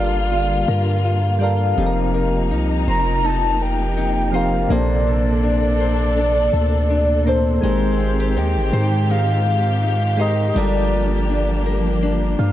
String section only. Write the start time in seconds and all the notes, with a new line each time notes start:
Already playing: D3 G3 A#3 F4
1.77 C3 F3 D#4
4.71 D4 A4
7.63 D#3 G#3 C4 G4
10.56 F3 A#3 D4